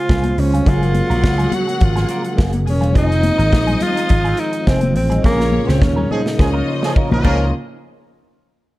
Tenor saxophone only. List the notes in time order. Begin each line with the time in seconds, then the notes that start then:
Already playing: F4
0.40 C#4
0.68 F4
1.54 F#4
1.84 F4
2.69 C#4
2.98 D#4
3.83 F4
4.39 D#4
4.68 C4
4.96 C4
5.25 A#3
5.69 C4
5.83 C#4
6.12 D#4
6.41 C#4
7.27 C#4